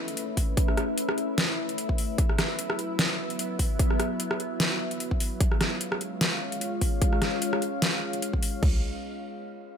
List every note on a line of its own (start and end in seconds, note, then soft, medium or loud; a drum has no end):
0.00 2.15 A3 medium
0.00 2.15 C#4 medium
0.00 5.37 E4 medium
0.00 5.36 B4 medium
0.00 5.37 E5 medium
0.08 closed hi-hat medium
0.17 closed hi-hat medium
0.37 kick medium
0.37 open hi-hat medium
0.57 kick loud
0.57 closed hi-hat medium
0.68 cross-stick medium
0.77 cross-stick medium
0.77 closed hi-hat soft
0.98 closed hi-hat medium
1.09 cross-stick medium
1.18 closed hi-hat soft
1.38 snare loud
1.38 closed hi-hat medium
1.69 closed hi-hat soft
1.78 closed hi-hat medium
1.89 kick medium
1.98 open hi-hat medium
2.18 5.37 F#3 medium
2.18 5.37 B3 medium
2.18 kick loud
2.18 closed hi-hat medium
2.29 cross-stick medium
2.39 cross-stick medium
2.39 snare medium
2.39 closed hi-hat medium
2.59 closed hi-hat medium
2.70 cross-stick medium
2.79 closed hi-hat soft
2.99 snare loud
2.99 closed hi-hat medium
3.30 closed hi-hat soft
3.39 closed hi-hat medium
3.59 kick medium
3.59 open hi-hat medium
3.79 kick loud
3.79 closed hi-hat medium
3.90 cross-stick medium
4.00 cross-stick medium
4.00 closed hi-hat medium
4.20 closed hi-hat medium
4.31 cross-stick medium
4.40 closed hi-hat medium
4.60 snare loud
4.60 closed hi-hat medium
4.91 closed hi-hat medium
5.00 closed hi-hat medium
5.11 kick medium
5.20 open hi-hat medium
5.40 8.59 G#3 medium
5.40 8.59 C#4 medium
5.40 8.59 F4 medium
5.40 8.59 C#5 medium
5.40 8.59 F5 medium
5.40 kick loud
5.40 closed hi-hat medium
5.52 cross-stick medium
5.61 cross-stick medium
5.61 snare medium
5.61 closed hi-hat medium
5.81 closed hi-hat medium
5.92 cross-stick medium
6.01 closed hi-hat medium
6.21 snare loud
6.21 closed hi-hat medium
6.52 closed hi-hat medium
6.61 closed hi-hat medium
6.81 kick medium
6.81 open hi-hat medium
7.02 kick loud
7.02 closed hi-hat medium
7.13 cross-stick soft
7.22 cross-stick medium
7.22 snare medium
7.22 closed hi-hat medium
7.42 closed hi-hat medium
7.53 cross-stick medium
7.62 closed hi-hat medium
7.82 snare loud
7.82 closed hi-hat medium
8.13 closed hi-hat medium
8.22 closed hi-hat medium
8.33 kick medium
8.43 open hi-hat loud
8.63 kick loud
8.63 floor tom loud
8.63 crash medium